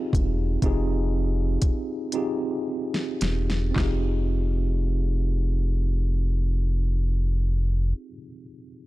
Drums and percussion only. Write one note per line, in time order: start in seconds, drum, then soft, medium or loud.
0.13 kick medium
0.13 closed hi-hat medium
0.62 kick medium
0.62 closed hi-hat medium
1.62 kick medium
1.62 closed hi-hat medium
2.12 closed hi-hat medium
2.94 snare medium
3.21 snare medium
3.21 closed hi-hat medium
3.50 snare medium
3.76 kick medium
3.76 snare medium
3.76 clap medium